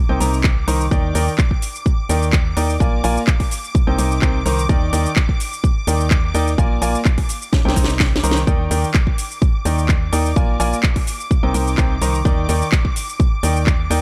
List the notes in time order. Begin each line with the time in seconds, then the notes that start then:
Already playing: D6
0.09 C2 C3 D#4 A#4 C5 G5
0.20 C2 C3 D#4 A#4 C5 A#5, open hi-hat, shaker
0.34 shaker
0.44 kick, clap, shaker
0.68 C2 D#3 D#4 A#4 C5 A#5, open hi-hat, shaker
0.81 shaker
0.91 D#2 D#3 D#4 A#4 D5 G5 D6, kick, shaker
1.15 D#2 D#3 D#4 A#4 D5 G5, open hi-hat, shaker
1.28 shaker
1.38 kick, clap, shaker
1.51 kick
1.62 open hi-hat, shaker
1.75 shaker
1.86 kick, shaker
2.09 D#2 D#3 D#4 A#4 D5 G5, open hi-hat, shaker
2.23 shaker
2.33 kick, clap, shaker
2.57 D#2 D#4 A#4 D5 G5, open hi-hat, shaker
2.70 shaker
2.80 A#1 A#3 F4 A#4 D5 G#5, kick, shaker
3.04 A#1 A#3 F4 A#4 D5 G#5, open hi-hat, shaker
3.17 shaker
3.27 kick, clap, shaker
3.40 kick, open hi-hat
3.51 open hi-hat, shaker
3.64 shaker
3.75 kick, shaker
3.87 C2 C3 D#4 A#4 C5 G5
3.98 C2 C3 D#4 A#4 C5 G5, open hi-hat, shaker
4.11 shaker
4.22 C2 C3 D#4 A#4 C5 G5, kick, clap, shaker
4.46 C2 D#3 D#4 A#4 C5 A#5, open hi-hat, shaker
4.59 shaker
4.69 D#2 D#3 D#4 A#4 D5 G5, kick, shaker
4.93 D#2 D#3 D#4 A#4 D5 G5, open hi-hat, shaker
5.06 shaker
5.16 kick, clap, shaker
5.29 kick
5.40 open hi-hat, shaker
5.53 shaker
5.64 kick, shaker
5.87 D#2 D#3 D#4 A#4 D5 G5, open hi-hat, shaker
6.00 shaker
6.11 kick, clap, shaker
6.34 D#2 D#4 A#4 D5 G5, open hi-hat, shaker
6.48 shaker
6.58 A#1 A#3 F4 A#4 D5 G#5, kick, shaker
6.82 A#1 A#3 F4 A#4 D5 G#5, open hi-hat, shaker
6.95 shaker
7.05 kick, clap, shaker
7.18 kick, open hi-hat
7.29 open hi-hat, shaker
7.42 shaker
7.53 kick, snare, shaker
7.65 C2 C3 D#4 A#4 C5 G5, snare
7.76 C2 C3 D#4 A#4 C5 A#5, kick, open hi-hat, shaker
7.84 snare
7.89 shaker
8.00 kick, snare, clap, shaker
8.16 snare
8.24 C2 D#3 D#4 A#4 C5 A#5, open hi-hat, shaker
8.31 snare
8.37 shaker
8.47 D#2 D#3 D#4 A#4 D5 G5 D6, kick, shaker
8.71 D#2 D#3 D#4 A#4 D5 G5, open hi-hat, shaker
8.84 shaker
8.94 kick, clap, shaker
9.07 kick
9.18 open hi-hat, shaker
9.31 shaker
9.42 kick, shaker
9.65 D#2 D#3 D#4 A#4 D5 G5, open hi-hat, shaker
9.78 shaker
9.89 kick, clap, shaker
10.13 D#2 D#4 A#4 D5 G5, open hi-hat, shaker
10.26 shaker
10.36 A#1 A#3 F4 A#4 D5 G#5, kick, shaker
10.60 A#1 A#3 F4 A#4 D5 G#5, open hi-hat, shaker
10.73 shaker
10.83 kick, clap, shaker
10.96 kick, open hi-hat
11.07 open hi-hat, shaker
11.20 shaker
11.31 kick, shaker
11.43 C2 C3 D#4 A#4 C5 G5
11.54 C2 C3 D#4 A#4 C5 G5, open hi-hat, shaker
11.67 shaker
11.78 C2 C3 D#4 A#4 C5 G5, kick, clap, shaker
12.02 C2 D#3 D#4 A#4 C5 A#5, open hi-hat, shaker
12.15 shaker
12.25 D#2 D#3 D#4 A#4 D5 G5, kick, shaker
12.49 D#2 D#3 D#4 A#4 D5 G5, open hi-hat, shaker
12.62 shaker
12.72 kick, clap, shaker
12.85 kick
12.96 open hi-hat, shaker
13.09 shaker
13.20 kick, shaker
13.43 D#2 D#3 D#4 A#4 D5 G5, open hi-hat, shaker
13.56 shaker
13.67 kick, clap, shaker
13.90 D#2 D#4 A#4 D5 G5, open hi-hat, shaker